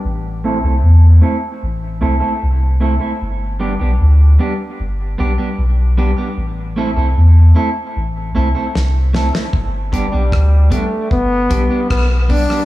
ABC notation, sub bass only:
X:1
M:4/4
L:1/16
Q:1/4=76
K:G
V:1 name="Sub bass" clef=bass
A,,,3 C,, E,,2 z2 A,,,2 C,, z C,,3 z | G,,,3 B,,, D,,2 z2 G,,,2 B,,, z B,,,3 z | A,,,3 C,, E,,2 z2 A,,,2 C,, z C,,3 z | G,,,3 B,,, D,,2 z2 G,,,2 B,,, z B,,,3 z |]